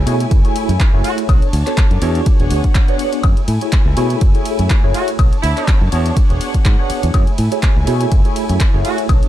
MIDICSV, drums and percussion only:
0, 0, Header, 1, 2, 480
1, 0, Start_track
1, 0, Key_signature, 3, "minor"
1, 0, Tempo, 487805
1, 1267, Time_signature, 4, 2, 24, 8
1, 9136, End_track
2, 0, Start_track
2, 0, Title_t, "Drums"
2, 67, Note_on_c, 9, 46, 114
2, 67, Note_on_c, 9, 51, 76
2, 166, Note_off_c, 9, 46, 0
2, 166, Note_off_c, 9, 51, 0
2, 201, Note_on_c, 9, 42, 51
2, 300, Note_off_c, 9, 42, 0
2, 307, Note_on_c, 9, 42, 79
2, 307, Note_on_c, 9, 51, 55
2, 309, Note_on_c, 9, 36, 127
2, 406, Note_off_c, 9, 42, 0
2, 406, Note_off_c, 9, 51, 0
2, 407, Note_off_c, 9, 36, 0
2, 440, Note_on_c, 9, 42, 35
2, 539, Note_off_c, 9, 42, 0
2, 548, Note_on_c, 9, 46, 113
2, 548, Note_on_c, 9, 51, 75
2, 646, Note_off_c, 9, 46, 0
2, 646, Note_off_c, 9, 51, 0
2, 681, Note_on_c, 9, 42, 53
2, 780, Note_off_c, 9, 42, 0
2, 789, Note_on_c, 9, 36, 122
2, 789, Note_on_c, 9, 42, 76
2, 789, Note_on_c, 9, 51, 53
2, 790, Note_on_c, 9, 39, 124
2, 887, Note_off_c, 9, 36, 0
2, 887, Note_off_c, 9, 42, 0
2, 887, Note_off_c, 9, 51, 0
2, 888, Note_off_c, 9, 39, 0
2, 1027, Note_on_c, 9, 46, 112
2, 1027, Note_on_c, 9, 51, 74
2, 1126, Note_off_c, 9, 46, 0
2, 1126, Note_off_c, 9, 51, 0
2, 1161, Note_on_c, 9, 42, 54
2, 1260, Note_off_c, 9, 42, 0
2, 1269, Note_on_c, 9, 36, 123
2, 1269, Note_on_c, 9, 42, 76
2, 1269, Note_on_c, 9, 51, 54
2, 1269, Note_on_c, 9, 76, 67
2, 1367, Note_off_c, 9, 36, 0
2, 1367, Note_off_c, 9, 42, 0
2, 1367, Note_off_c, 9, 51, 0
2, 1367, Note_off_c, 9, 76, 0
2, 1400, Note_on_c, 9, 42, 35
2, 1499, Note_off_c, 9, 42, 0
2, 1508, Note_on_c, 9, 46, 111
2, 1508, Note_on_c, 9, 51, 78
2, 1606, Note_off_c, 9, 46, 0
2, 1606, Note_off_c, 9, 51, 0
2, 1641, Note_on_c, 9, 42, 50
2, 1642, Note_on_c, 9, 39, 36
2, 1739, Note_off_c, 9, 42, 0
2, 1740, Note_off_c, 9, 39, 0
2, 1747, Note_on_c, 9, 42, 78
2, 1747, Note_on_c, 9, 51, 55
2, 1748, Note_on_c, 9, 39, 121
2, 1749, Note_on_c, 9, 36, 127
2, 1845, Note_off_c, 9, 42, 0
2, 1845, Note_off_c, 9, 51, 0
2, 1846, Note_off_c, 9, 39, 0
2, 1847, Note_off_c, 9, 36, 0
2, 1878, Note_on_c, 9, 42, 35
2, 1976, Note_off_c, 9, 42, 0
2, 1984, Note_on_c, 9, 46, 111
2, 1984, Note_on_c, 9, 51, 77
2, 2083, Note_off_c, 9, 46, 0
2, 2083, Note_off_c, 9, 51, 0
2, 2118, Note_on_c, 9, 42, 50
2, 2216, Note_off_c, 9, 42, 0
2, 2226, Note_on_c, 9, 42, 74
2, 2226, Note_on_c, 9, 51, 56
2, 2228, Note_on_c, 9, 36, 125
2, 2324, Note_off_c, 9, 42, 0
2, 2324, Note_off_c, 9, 51, 0
2, 2327, Note_off_c, 9, 36, 0
2, 2358, Note_on_c, 9, 42, 35
2, 2456, Note_off_c, 9, 42, 0
2, 2465, Note_on_c, 9, 46, 108
2, 2465, Note_on_c, 9, 51, 76
2, 2563, Note_off_c, 9, 46, 0
2, 2563, Note_off_c, 9, 51, 0
2, 2599, Note_on_c, 9, 42, 51
2, 2601, Note_on_c, 9, 36, 64
2, 2697, Note_off_c, 9, 42, 0
2, 2699, Note_off_c, 9, 36, 0
2, 2705, Note_on_c, 9, 42, 74
2, 2705, Note_on_c, 9, 51, 55
2, 2706, Note_on_c, 9, 39, 118
2, 2708, Note_on_c, 9, 36, 124
2, 2804, Note_off_c, 9, 42, 0
2, 2804, Note_off_c, 9, 51, 0
2, 2805, Note_off_c, 9, 39, 0
2, 2807, Note_off_c, 9, 36, 0
2, 2837, Note_on_c, 9, 42, 36
2, 2935, Note_off_c, 9, 42, 0
2, 2945, Note_on_c, 9, 46, 107
2, 2945, Note_on_c, 9, 51, 75
2, 3043, Note_off_c, 9, 46, 0
2, 3043, Note_off_c, 9, 51, 0
2, 3076, Note_on_c, 9, 42, 50
2, 3174, Note_off_c, 9, 42, 0
2, 3183, Note_on_c, 9, 42, 73
2, 3183, Note_on_c, 9, 51, 55
2, 3183, Note_on_c, 9, 76, 70
2, 3188, Note_on_c, 9, 36, 121
2, 3282, Note_off_c, 9, 42, 0
2, 3282, Note_off_c, 9, 51, 0
2, 3282, Note_off_c, 9, 76, 0
2, 3286, Note_off_c, 9, 36, 0
2, 3316, Note_on_c, 9, 42, 35
2, 3415, Note_off_c, 9, 42, 0
2, 3423, Note_on_c, 9, 46, 103
2, 3423, Note_on_c, 9, 51, 80
2, 3521, Note_off_c, 9, 46, 0
2, 3521, Note_off_c, 9, 51, 0
2, 3556, Note_on_c, 9, 42, 51
2, 3654, Note_off_c, 9, 42, 0
2, 3664, Note_on_c, 9, 42, 78
2, 3664, Note_on_c, 9, 51, 58
2, 3666, Note_on_c, 9, 39, 114
2, 3668, Note_on_c, 9, 36, 123
2, 3763, Note_off_c, 9, 42, 0
2, 3763, Note_off_c, 9, 51, 0
2, 3764, Note_off_c, 9, 39, 0
2, 3767, Note_off_c, 9, 36, 0
2, 3904, Note_on_c, 9, 46, 103
2, 3904, Note_on_c, 9, 51, 79
2, 4003, Note_off_c, 9, 46, 0
2, 4003, Note_off_c, 9, 51, 0
2, 4037, Note_on_c, 9, 42, 51
2, 4136, Note_off_c, 9, 42, 0
2, 4145, Note_on_c, 9, 42, 79
2, 4145, Note_on_c, 9, 51, 57
2, 4148, Note_on_c, 9, 36, 121
2, 4243, Note_off_c, 9, 42, 0
2, 4243, Note_off_c, 9, 51, 0
2, 4247, Note_off_c, 9, 36, 0
2, 4278, Note_on_c, 9, 42, 36
2, 4376, Note_off_c, 9, 42, 0
2, 4384, Note_on_c, 9, 46, 107
2, 4384, Note_on_c, 9, 51, 78
2, 4482, Note_off_c, 9, 46, 0
2, 4482, Note_off_c, 9, 51, 0
2, 4516, Note_on_c, 9, 42, 53
2, 4614, Note_off_c, 9, 42, 0
2, 4624, Note_on_c, 9, 42, 79
2, 4624, Note_on_c, 9, 51, 56
2, 4625, Note_on_c, 9, 39, 117
2, 4628, Note_on_c, 9, 36, 120
2, 4722, Note_off_c, 9, 42, 0
2, 4722, Note_off_c, 9, 51, 0
2, 4724, Note_off_c, 9, 39, 0
2, 4727, Note_off_c, 9, 36, 0
2, 4865, Note_on_c, 9, 46, 106
2, 4865, Note_on_c, 9, 51, 78
2, 4964, Note_off_c, 9, 46, 0
2, 4964, Note_off_c, 9, 51, 0
2, 4998, Note_on_c, 9, 42, 52
2, 5096, Note_off_c, 9, 42, 0
2, 5107, Note_on_c, 9, 42, 81
2, 5107, Note_on_c, 9, 51, 58
2, 5107, Note_on_c, 9, 76, 70
2, 5108, Note_on_c, 9, 36, 118
2, 5205, Note_off_c, 9, 42, 0
2, 5205, Note_off_c, 9, 51, 0
2, 5205, Note_off_c, 9, 76, 0
2, 5207, Note_off_c, 9, 36, 0
2, 5241, Note_on_c, 9, 42, 37
2, 5339, Note_off_c, 9, 42, 0
2, 5348, Note_on_c, 9, 46, 99
2, 5348, Note_on_c, 9, 51, 79
2, 5447, Note_off_c, 9, 46, 0
2, 5447, Note_off_c, 9, 51, 0
2, 5482, Note_on_c, 9, 42, 53
2, 5483, Note_on_c, 9, 39, 34
2, 5580, Note_off_c, 9, 42, 0
2, 5582, Note_off_c, 9, 39, 0
2, 5588, Note_on_c, 9, 36, 118
2, 5588, Note_on_c, 9, 42, 81
2, 5588, Note_on_c, 9, 51, 60
2, 5589, Note_on_c, 9, 39, 118
2, 5686, Note_off_c, 9, 36, 0
2, 5686, Note_off_c, 9, 42, 0
2, 5686, Note_off_c, 9, 51, 0
2, 5688, Note_off_c, 9, 39, 0
2, 5827, Note_on_c, 9, 46, 102
2, 5827, Note_on_c, 9, 51, 81
2, 5925, Note_off_c, 9, 46, 0
2, 5925, Note_off_c, 9, 51, 0
2, 5960, Note_on_c, 9, 42, 51
2, 6058, Note_off_c, 9, 42, 0
2, 6068, Note_on_c, 9, 36, 117
2, 6068, Note_on_c, 9, 42, 82
2, 6068, Note_on_c, 9, 51, 59
2, 6166, Note_off_c, 9, 36, 0
2, 6166, Note_off_c, 9, 42, 0
2, 6166, Note_off_c, 9, 51, 0
2, 6200, Note_on_c, 9, 42, 37
2, 6299, Note_off_c, 9, 42, 0
2, 6305, Note_on_c, 9, 46, 103
2, 6305, Note_on_c, 9, 51, 82
2, 6404, Note_off_c, 9, 46, 0
2, 6404, Note_off_c, 9, 51, 0
2, 6440, Note_on_c, 9, 36, 61
2, 6440, Note_on_c, 9, 42, 54
2, 6538, Note_off_c, 9, 42, 0
2, 6539, Note_off_c, 9, 36, 0
2, 6546, Note_on_c, 9, 42, 80
2, 6546, Note_on_c, 9, 51, 57
2, 6547, Note_on_c, 9, 39, 115
2, 6548, Note_on_c, 9, 36, 114
2, 6644, Note_off_c, 9, 42, 0
2, 6644, Note_off_c, 9, 51, 0
2, 6646, Note_off_c, 9, 36, 0
2, 6646, Note_off_c, 9, 39, 0
2, 6787, Note_on_c, 9, 46, 104
2, 6787, Note_on_c, 9, 51, 82
2, 6885, Note_off_c, 9, 46, 0
2, 6885, Note_off_c, 9, 51, 0
2, 6920, Note_on_c, 9, 42, 54
2, 7018, Note_off_c, 9, 42, 0
2, 7026, Note_on_c, 9, 42, 81
2, 7026, Note_on_c, 9, 51, 59
2, 7026, Note_on_c, 9, 76, 67
2, 7028, Note_on_c, 9, 36, 113
2, 7124, Note_off_c, 9, 42, 0
2, 7124, Note_off_c, 9, 51, 0
2, 7124, Note_off_c, 9, 76, 0
2, 7126, Note_off_c, 9, 36, 0
2, 7156, Note_on_c, 9, 42, 38
2, 7255, Note_off_c, 9, 42, 0
2, 7263, Note_on_c, 9, 46, 101
2, 7263, Note_on_c, 9, 51, 83
2, 7361, Note_off_c, 9, 46, 0
2, 7361, Note_off_c, 9, 51, 0
2, 7398, Note_on_c, 9, 42, 55
2, 7496, Note_off_c, 9, 42, 0
2, 7505, Note_on_c, 9, 42, 86
2, 7505, Note_on_c, 9, 51, 60
2, 7507, Note_on_c, 9, 39, 117
2, 7508, Note_on_c, 9, 36, 114
2, 7604, Note_off_c, 9, 42, 0
2, 7604, Note_off_c, 9, 51, 0
2, 7605, Note_off_c, 9, 39, 0
2, 7607, Note_off_c, 9, 36, 0
2, 7745, Note_on_c, 9, 46, 101
2, 7745, Note_on_c, 9, 51, 84
2, 7844, Note_off_c, 9, 46, 0
2, 7844, Note_off_c, 9, 51, 0
2, 7878, Note_on_c, 9, 42, 55
2, 7976, Note_off_c, 9, 42, 0
2, 7986, Note_on_c, 9, 42, 84
2, 7986, Note_on_c, 9, 51, 59
2, 7988, Note_on_c, 9, 36, 116
2, 8084, Note_off_c, 9, 42, 0
2, 8084, Note_off_c, 9, 51, 0
2, 8086, Note_off_c, 9, 36, 0
2, 8118, Note_on_c, 9, 42, 37
2, 8216, Note_off_c, 9, 42, 0
2, 8226, Note_on_c, 9, 46, 104
2, 8226, Note_on_c, 9, 51, 84
2, 8325, Note_off_c, 9, 46, 0
2, 8325, Note_off_c, 9, 51, 0
2, 8358, Note_on_c, 9, 42, 56
2, 8457, Note_off_c, 9, 42, 0
2, 8465, Note_on_c, 9, 42, 82
2, 8465, Note_on_c, 9, 51, 59
2, 8466, Note_on_c, 9, 39, 118
2, 8468, Note_on_c, 9, 36, 113
2, 8563, Note_off_c, 9, 42, 0
2, 8563, Note_off_c, 9, 51, 0
2, 8565, Note_off_c, 9, 39, 0
2, 8566, Note_off_c, 9, 36, 0
2, 8706, Note_on_c, 9, 46, 99
2, 8706, Note_on_c, 9, 51, 84
2, 8804, Note_off_c, 9, 46, 0
2, 8804, Note_off_c, 9, 51, 0
2, 8839, Note_on_c, 9, 42, 56
2, 8937, Note_off_c, 9, 42, 0
2, 8947, Note_on_c, 9, 42, 84
2, 8947, Note_on_c, 9, 51, 57
2, 8947, Note_on_c, 9, 76, 65
2, 8948, Note_on_c, 9, 36, 115
2, 9045, Note_off_c, 9, 42, 0
2, 9045, Note_off_c, 9, 51, 0
2, 9045, Note_off_c, 9, 76, 0
2, 9046, Note_off_c, 9, 36, 0
2, 9078, Note_on_c, 9, 42, 39
2, 9136, Note_off_c, 9, 42, 0
2, 9136, End_track
0, 0, End_of_file